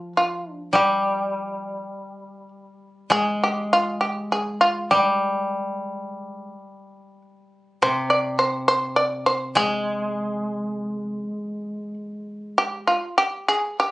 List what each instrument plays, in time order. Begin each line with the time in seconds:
Already playing: koto F3, shamisen F4
0.17 shamisen F4
0.53 shamisen D4
0.73 koto G3, shamisen G4
3.10 koto G#3, shamisen G#4
3.44 shamisen G4
3.73 shamisen F4
4.01 shamisen G4
4.32 shamisen G#4
4.61 shamisen F4
4.91 koto G3, shamisen G4
7.82 koto C3, shamisen C5
8.10 shamisen D5
8.39 shamisen C5
8.68 shamisen C5
8.96 shamisen D5
9.26 shamisen C5
9.55 koto G#3, shamisen G#4
12.58 shamisen G4
12.87 shamisen F4
13.18 shamisen G4
13.48 shamisen G#4
13.80 shamisen G4